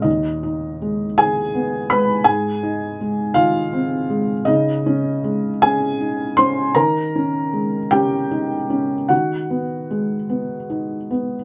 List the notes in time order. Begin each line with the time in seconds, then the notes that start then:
0.02 D#2 D#4 D#5
0.43 D#4
0.82 G#3
1.18 D#3 G#4 G#5
1.55 B3
1.90 G#3 B4 B5
2.24 G#2 G#4 G#5
2.63 D#4
3.01 G#3
3.34 D#3 F4 F5
3.73 C4
4.10 G#3
4.45 C#3 D#4 D#5
4.86 C#4
5.24 G#3
5.62 C#4 G#4 G#5
6.01 D#4
6.37 C#4 C5 C6
6.75 D#3 A#4 A#5
7.16 C#4
7.53 G#3
7.91 C#4 G4 G5
8.31 D#4
8.70 C#4
9.09 D#3 F#4 F#5
9.50 B3
9.90 G#3
10.29 B3
10.70 D#4
11.11 B3